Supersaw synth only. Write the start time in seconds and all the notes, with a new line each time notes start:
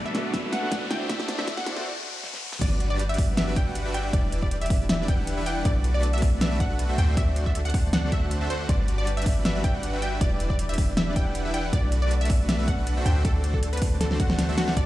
Already playing: A3 D4 F#4 B4 D5
0.34 A3 D4 F#4 B4 D5
0.44 A3 D4 F#4 B4 E5
0.63 A3 D4 F#4 B4 F#5
0.82 A3 D4 F#4 C5 E5
1.09 A3 D4 F#4 C5 D5
1.38 A3 D4 F#4 C5 D5
2.61 G3 D4 F#4 B4 D5
2.90 G3 D4 F#4 B4 D5
3.37 G3 D4 F#4 B4 D5
3.47 G3 D4 F#4 B4 E5
3.67 G3 D4 F#4 B4 F#5
3.85 G3 D4 F#4 B4 E5
4.13 G3 D4 E4 B4 D5
4.42 G3 D4 E4 B4 D5
5.08 G3 D4 E4 B4 F#5
5.37 G3 D4 E4 B4 E5
5.46 G3 D4 E4 B4 F#5
5.65 A3 D4 F#4 B4 D5
5.94 A3 D4 F#4 B4 D5
6.41 A3 D4 F#4 B4 D5
6.51 A3 D4 F#4 B4 E5
6.70 A3 D4 F#4 B4 F#5
6.89 A3 D4 F#4 C5 E5
7.17 A3 D4 F#4 C5 D5
7.46 A3 D4 F#4 C5 D5
8.12 A3 D4 F#4 C5 F#5
8.41 A3 D4 F#4 C5 E5
8.50 A3 D4 F#4 C5 F#5
8.69 G3 D4 F#4 B4 D5
8.98 G3 D4 F#4 B4 D5
9.45 G3 D4 F#4 B4 D5
9.55 G3 D4 F#4 B4 E5
9.74 G3 D4 F#4 B4 F#5
9.93 G3 D4 F#4 B4 E5
10.21 G3 D4 E4 B4 D5
10.50 G3 D4 E4 B4 D5
11.16 G3 D4 E4 B4 F#5
11.45 G3 D4 E4 B4 E5
11.54 G3 D4 E4 B4 F#5
11.73 A3 D4 F#4 B4 D5
12.02 A3 D4 F#4 B4 D5
12.49 A3 D4 F#4 B4 D5
12.59 A3 D4 F#4 B4 E5
12.78 A3 D4 F#4 B4 F#5
12.97 A3 D4 F#4 C5 E5
13.25 A3 D4 F#4 C5 D5
13.54 A3 D4 F#4 C5 D5
14.20 A3 D4 F#4 C5 F#5
14.49 A3 D4 F#4 C5 E5
14.58 A3 D4 F#4 C5 F#5
14.77 G3 D4 F#4 B4 D5